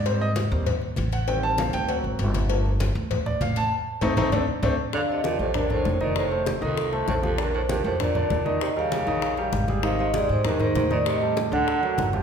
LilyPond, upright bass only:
\new Staff \with { instrumentName = "Upright bass" } { \clef bass \time 4/4 \key g \minor \tempo 4 = 196 aes,4. ees,4. a,,4~ | a,,4. d,4 aes,,8 g,,4~ | g,,4. d,4. a,,4 | r4 a,,8 a,,8 d,8 r8 d,8 r8 |
r4. bes,,4. f,,4~ | f,,4. c,4. bes,,4~ | bes,,4. f,4. ees,4~ | ees,4. bes,,4. aes,,4~ |
aes,,4. aes,4. a,4~ | a,4. d,4. g,,4 | }